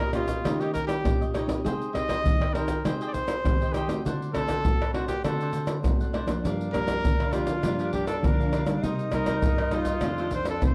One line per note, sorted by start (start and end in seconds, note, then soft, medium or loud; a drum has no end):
0.00 0.41 A#2 medium
0.00 0.13 G4 soft
0.00 0.10 A#4 loud
0.00 0.14 C#5 soft
0.00 0.13 D#5 soft
0.00 pandeiro soft
0.00 tamborim medium
0.00 shaker soft
0.13 0.39 A#3 medium
0.13 0.39 C#4 medium
0.13 0.28 D#4 medium
0.13 0.62 F4 medium
0.13 0.39 G4 medium
0.13 0.28 G4 medium
0.13 0.28 C#5 medium
0.13 0.26 D#5 medium
0.13 pandeiro medium
0.13 tamborim medium
0.13 shaker medium
0.28 0.43 G4 soft
0.28 0.43 C#5 soft
0.28 0.42 D#5 soft
0.28 pandeiro medium
0.28 shaker medium
0.28 surdo soft
0.44 1.02 D#3 medium
0.44 0.83 A#3 medium
0.44 0.83 C#4 medium
0.44 0.58 D#4 medium
0.44 0.58 G4 medium
0.44 0.84 G4 medium
0.44 0.59 C#5 medium
0.44 0.59 D#5 medium
0.44 pandeiro medium
0.44 tamborim medium
0.44 shaker medium
0.44 surdo medium
0.60 0.69 D#4 medium
0.60 0.73 G4 medium
0.60 0.69 G4 medium
0.60 0.70 C#5 medium
0.60 0.70 D#5 medium
0.60 pandeiro soft
0.60 shaker soft
0.74 1.18 G4 soft
0.74 0.86 A#4 medium
0.74 1.19 C#5 medium
0.74 1.19 D#5 soft
0.74 pandeiro medium
0.74 shaker medium
0.74 surdo soft
0.87 1.30 G4 medium
0.87 pandeiro medium
0.87 tamborim medium
0.87 shaker medium
1.04 1.61 A#2 medium
1.04 1.32 A#3 medium
1.04 1.33 C#4 medium
1.04 1.33 G4 medium
1.04 pandeiro medium
1.04 tamborim medium
1.04 shaker medium
1.04 surdo medium
1.21 1.34 G4 soft
1.21 1.34 C#5 soft
1.21 1.34 D#5 medium
1.21 pandeiro soft
1.21 shaker soft
1.34 1.48 D#4 medium
1.34 1.49 G4 medium
1.34 1.48 C#5 medium
1.34 1.47 D#5 medium
1.34 pandeiro medium
1.34 tamborim medium
1.34 shaker medium
1.48 1.89 C4 medium
1.48 1.89 D#4 medium
1.48 1.89 G4 medium
1.48 1.64 G4 soft
1.48 1.63 C#5 soft
1.48 1.63 D#5 soft
1.48 pandeiro medium
1.48 tamborim medium
1.48 shaker medium
1.48 surdo soft
1.64 2.22 G#3 medium
1.64 1.92 G#4 medium
1.64 1.93 C5 medium
1.64 1.93 D#5 medium
1.64 1.94 G5 medium
1.64 pandeiro medium
1.64 shaker medium
1.64 surdo medium
1.82 pandeiro soft
1.82 shaker soft
1.93 2.33 C4 medium
1.93 2.33 D#4 soft
1.93 2.33 G4 medium
1.93 2.07 G#4 soft
1.93 2.07 C5 soft
1.93 2.55 D#5 loud
1.93 2.08 D#5 soft
1.93 2.08 G5 soft
1.93 pandeiro medium
1.93 tamborim medium
1.93 shaker medium
1.93 surdo soft
2.08 2.18 G#4 medium
2.08 2.18 C5 medium
2.08 2.18 D#5 medium
2.08 2.18 G5 medium
2.08 pandeiro medium
2.08 tamborim medium
2.08 shaker medium
2.08 surdo soft
2.24 2.81 D#3 medium
2.24 pandeiro medium
2.24 shaker medium
2.24 surdo loud
2.41 2.53 C5 soft
2.41 2.53 D#5 soft
2.41 2.54 G5 soft
2.41 pandeiro soft
2.41 tamborim medium
2.41 shaker soft
2.53 2.72 C4 medium
2.53 2.72 D#4 medium
2.53 2.72 G4 medium
2.53 2.68 G#4 medium
2.53 2.84 A#4 medium
2.53 2.68 C5 medium
2.53 2.67 D#5 medium
2.53 2.66 G5 medium
2.53 pandeiro medium
2.53 tamborim medium
2.53 shaker medium
2.67 2.83 C5 soft
2.67 2.83 D#5 soft
2.67 2.82 G5 medium
2.67 pandeiro medium
2.67 shaker medium
2.67 surdo soft
2.85 3.42 G#3 medium
2.85 3.40 C4 medium
2.85 3.40 D#4 medium
2.85 2.99 G#4 medium
2.85 2.99 C5 medium
2.85 2.99 D#5 medium
2.85 3.00 G5 medium
2.85 pandeiro medium
2.85 tamborim medium
2.85 shaker medium
2.85 surdo medium
3.01 3.09 G#4 medium
3.01 3.09 C5 medium
3.01 3.10 D#5 medium
3.01 3.10 G5 medium
3.01 pandeiro soft
3.01 shaker soft
3.07 3.14 D5 medium
3.13 3.58 G#4 soft
3.13 3.75 C5 loud
3.13 3.59 C5 soft
3.13 3.59 D#5 soft
3.13 3.59 G5 soft
3.13 pandeiro medium
3.13 shaker medium
3.13 surdo soft
3.28 pandeiro medium
3.28 tamborim medium
3.28 shaker medium
3.44 4.02 D#3 medium
3.44 3.73 C4 medium
3.44 3.73 D#4 soft
3.44 3.73 G4 medium
3.44 pandeiro medium
3.44 tamborim medium
3.44 shaker medium
3.44 surdo medium
3.61 3.74 C5 soft
3.61 3.75 D#5 soft
3.61 3.74 G5 soft
3.61 pandeiro soft
3.61 shaker soft
3.73 4.04 G4 medium
3.73 3.88 G#4 medium
3.73 3.89 C5 medium
3.73 3.88 D#5 medium
3.73 3.87 G5 medium
3.73 pandeiro medium
3.73 tamborim medium
3.73 shaker medium
3.88 4.29 A3 medium
3.88 4.29 C4 medium
3.88 4.29 F#4 medium
3.88 4.04 C5 soft
3.88 4.03 D#5 soft
3.88 4.03 G5 soft
3.88 pandeiro medium
3.88 tamborim medium
3.88 shaker medium
3.88 surdo soft
4.05 4.62 D3 medium
4.05 4.33 D4 medium
4.05 4.34 C5 medium
4.05 4.34 D5 medium
4.05 4.35 F#5 medium
4.05 pandeiro medium
4.05 shaker medium
4.05 surdo medium
4.22 pandeiro soft
4.22 shaker soft
4.33 4.59 A3 soft
4.33 4.59 C4 medium
4.33 4.47 D4 soft
4.33 4.59 F#4 medium
4.33 4.90 A4 loud
4.33 4.48 C5 soft
4.33 4.48 D5 soft
4.33 4.48 F#5 soft
4.33 pandeiro medium
4.33 tamborim medium
4.33 shaker medium
4.33 surdo soft
4.48 4.58 D4 medium
4.48 4.58 C5 medium
4.48 4.58 D5 medium
4.48 4.59 F#5 medium
4.48 pandeiro medium
4.48 tamborim medium
4.48 shaker medium
4.48 surdo soft
4.65 5.22 A2 medium
4.65 4.82 A3 medium
4.65 4.82 C4 medium
4.65 4.82 F#4 medium
4.65 pandeiro medium
4.65 shaker medium
4.65 surdo loud
4.81 4.94 C5 soft
4.81 4.95 D5 soft
4.81 4.94 F#5 soft
4.81 pandeiro soft
4.81 tamborim medium
4.81 shaker soft
4.93 5.12 A3 medium
4.93 5.12 C4 medium
4.93 5.08 D4 medium
4.93 5.08 F#4 medium
4.93 5.12 F#4 medium
4.93 5.09 C5 medium
4.93 5.08 D5 medium
4.93 5.07 F#5 medium
4.93 pandeiro medium
4.93 tamborim medium
5.08 5.23 G4 medium
5.08 5.24 C5 soft
5.08 5.23 D5 soft
5.08 5.23 F#5 medium
5.08 pandeiro medium
5.08 shaker medium
5.08 surdo soft
5.24 5.82 D3 medium
5.24 5.80 A3 medium
5.24 5.80 C4 medium
5.24 5.39 D4 medium
5.24 5.80 F#4 medium
5.24 5.80 A4 medium
5.24 5.39 C5 medium
5.24 5.39 D5 medium
5.24 5.40 F#5 medium
5.24 pandeiro medium
5.24 tamborim medium
5.24 shaker medium
5.24 surdo medium
5.41 5.50 D4 medium
5.41 5.50 C5 medium
5.41 5.50 D5 medium
5.41 5.50 F#5 medium
5.41 pandeiro soft
5.41 shaker soft
5.53 5.98 D4 soft
5.53 5.99 C5 soft
5.53 5.99 D5 soft
5.53 5.99 F#5 soft
5.53 pandeiro medium
5.53 shaker medium
5.67 pandeiro medium
5.67 tamborim medium
5.67 shaker medium
5.83 6.41 A2 medium
5.83 6.24 A3 medium
5.83 6.24 C4 medium
5.83 6.25 F#4 medium
5.83 pandeiro medium
5.83 tamborim medium
5.83 shaker medium
5.83 surdo loud
6.01 6.13 C5 soft
6.01 6.14 D5 soft
6.01 6.14 F#5 medium
6.01 pandeiro soft
6.01 shaker soft
6.13 6.28 D4 medium
6.13 6.28 C5 medium
6.13 6.28 D5 medium
6.13 6.27 F#5 medium
6.13 pandeiro medium
6.13 tamborim medium
6.26 6.68 F3 medium
6.26 6.68 A#3 medium
6.26 6.68 D4 medium
6.26 6.44 C5 soft
6.26 6.43 D5 soft
6.26 6.43 F#5 soft
6.26 pandeiro medium
6.26 tamborim medium
6.26 shaker medium
6.26 surdo soft
6.44 7.01 G2 medium
6.44 8.84 D4 loud
6.44 6.72 G4 medium
6.44 6.73 A#4 medium
6.44 6.74 D5 medium
6.44 6.74 F5 medium
6.44 pandeiro medium
6.44 shaker medium
6.44 surdo medium
6.61 pandeiro soft
6.61 shaker soft
6.73 7.12 F3 medium
6.73 7.12 A#3 medium
6.73 7.13 D4 medium
6.73 6.86 G4 soft
6.73 7.34 A#4 loud
6.73 6.87 A#4 soft
6.73 6.87 D5 soft
6.73 6.87 F5 soft
6.73 pandeiro medium
6.73 tamborim medium
6.73 shaker medium
6.73 surdo soft
6.87 6.97 G4 medium
6.87 6.98 A#4 medium
6.87 6.98 D5 medium
6.87 6.98 F5 medium
6.87 pandeiro medium
6.87 tamborim medium
6.87 shaker medium
6.87 surdo soft
7.04 7.61 D3 medium
7.04 pandeiro medium
7.04 shaker medium
7.04 surdo loud
7.20 7.33 A#4 soft
7.20 7.34 D5 soft
7.20 7.33 F5 soft
7.20 pandeiro soft
7.20 tamborim medium
7.20 shaker soft
7.33 7.59 F3 medium
7.33 7.59 A#3 medium
7.33 7.59 D4 medium
7.33 7.93 F4 medium
7.33 7.48 G4 medium
7.33 7.48 A#4 medium
7.33 7.47 D5 medium
7.33 7.46 F5 medium
7.33 pandeiro medium
7.33 tamborim medium
7.33 shaker medium
7.47 7.63 A#4 soft
7.47 7.63 D5 soft
7.47 7.62 F5 soft
7.47 pandeiro medium
7.47 shaker medium
7.47 surdo soft
7.63 8.21 G2 medium
7.63 8.02 F3 medium
7.63 8.03 A#3 medium
7.63 8.03 D4 medium
7.63 7.78 G4 medium
7.63 7.78 A#4 medium
7.63 7.78 D5 medium
7.63 7.79 F5 medium
7.63 pandeiro medium
7.63 tamborim medium
7.63 shaker medium
7.63 surdo medium
7.79 7.89 G4 medium
7.79 7.89 A#4 medium
7.79 7.89 D5 medium
7.79 7.89 F5 medium
7.79 pandeiro soft
7.79 shaker soft
7.93 8.38 G4 soft
7.93 8.07 G4 medium
7.93 8.38 A#4 soft
7.93 8.38 D5 medium
7.93 8.39 F5 soft
7.93 pandeiro medium
7.93 surdo soft
8.07 8.27 A4 medium
8.07 pandeiro medium
8.07 tamborim medium
8.07 shaker medium
8.23 8.80 D3 medium
8.23 8.63 F3 medium
8.23 8.64 A#3 medium
8.23 8.64 D4 medium
8.23 8.70 A#4 medium
8.23 pandeiro medium
8.23 tamborim medium
8.23 shaker medium
8.23 surdo loud
8.40 8.53 A#4 soft
8.40 8.53 D5 soft
8.40 8.53 F5 soft
8.40 pandeiro soft
8.40 shaker soft
8.53 8.67 G4 medium
8.53 8.68 A#4 medium
8.53 8.66 D5 medium
8.53 8.65 F5 medium
8.53 pandeiro medium
8.53 tamborim medium
8.53 shaker medium
8.66 9.08 G3 medium
8.66 9.08 A#3 medium
8.66 9.08 D#4 medium
8.66 8.83 A#4 soft
8.66 8.82 D5 soft
8.66 8.82 F5 soft
8.66 pandeiro medium
8.66 tamborim medium
8.66 shaker medium
8.66 surdo soft
8.83 9.40 C3 medium
8.83 10.05 D#4 loud
8.83 9.12 D#4 medium
8.83 9.13 A#4 medium
8.83 9.13 C5 medium
8.83 9.14 D#5 medium
8.83 pandeiro medium
8.83 shaker medium
8.83 surdo medium
8.99 pandeiro soft
8.99 shaker soft
9.12 9.51 G3 medium
9.12 9.52 A#3 medium
9.12 9.52 D#4 medium
9.12 9.26 D#4 soft
9.12 9.27 A#4 soft
9.12 9.77 A#4 medium
9.12 9.27 C5 medium
9.12 9.27 D#5 medium
9.12 pandeiro medium
9.12 tamborim medium
9.12 shaker medium
9.12 surdo soft
9.26 9.37 D#4 medium
9.26 9.37 A#4 medium
9.26 9.38 C5 medium
9.26 9.38 D#5 medium
9.26 pandeiro medium
9.26 tamborim medium
9.26 shaker medium
9.26 surdo soft
9.42 10.01 G2 medium
9.42 pandeiro medium
9.42 shaker medium
9.42 surdo loud
9.58 9.71 A#4 soft
9.58 9.72 C5 soft
9.58 9.73 D#5 medium
9.58 pandeiro soft
9.58 tamborim medium
9.58 shaker soft
9.71 9.98 G3 medium
9.71 9.98 A#3 medium
9.71 9.86 D#4 medium
9.71 9.98 D#4 medium
9.71 9.87 A#4 medium
9.71 9.86 C5 medium
9.71 9.85 D#5 medium
9.71 pandeiro medium
9.71 tamborim medium
9.71 shaker medium
9.75 10.34 F4 medium
9.85 10.02 A#4 soft
9.85 10.02 C5 soft
9.85 10.01 D#5 soft
9.85 pandeiro medium
9.85 shaker medium
9.85 surdo soft
10.01 10.60 F2 medium
10.01 10.42 D#3 medium
10.01 10.42 A3 medium
10.01 10.42 C4 medium
10.01 10.64 D4 medium
10.01 10.17 F4 medium
10.01 10.18 A4 medium
10.01 10.18 C5 medium
10.01 pandeiro medium
10.01 tamborim medium
10.01 shaker medium
10.01 surdo medium
10.05 10.18 D#5 medium
10.18 10.28 F4 medium
10.18 10.28 A4 medium
10.18 10.28 C5 medium
10.18 10.29 D#5 medium
10.18 pandeiro soft
10.18 shaker soft
10.31 10.75 F4 soft
10.31 10.75 A4 soft
10.31 10.75 C5 soft
10.31 10.48 C5 medium
10.31 pandeiro medium
10.31 shaker medium
10.31 surdo soft
10.45 10.63 A4 medium
10.45 pandeiro medium
10.45 tamborim medium
10.45 shaker medium
10.62 10.75 C3 medium
10.62 10.75 D#3 medium
10.62 10.75 A3 medium
10.62 10.75 C4 loud
10.62 10.75 C4 medium
10.62 10.75 C5 medium
10.62 pandeiro medium
10.62 tamborim medium
10.62 shaker medium
10.62 surdo loud